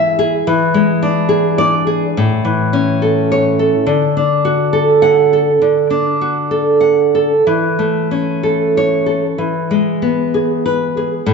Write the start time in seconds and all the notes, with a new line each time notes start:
Already playing: E3 G#3 E4 G#4 E5
0.19 G#4
0.47 E3
0.74 G#3
1.03 D4
1.29 G#4
1.58 D5
1.87 G#4
2.17 A2
2.45 E3
2.73 C#4
3.02 A4
3.32 C#5
3.59 A4
3.87 D3
4.17 D4
4.45 F#4
4.73 A4
5.02 F#5
5.33 A4
5.62 D3
5.90 D4
6.21 F#4
6.51 A4
6.81 F#5
7.15 A4
7.47 E3
7.79 A3
8.11 C#4
8.43 A4
8.77 C#5
9.06 A4
9.38 E3
9.71 G#3
10.02 B3
10.34 G#4
10.66 B4
10.97 G#4
11.26 A2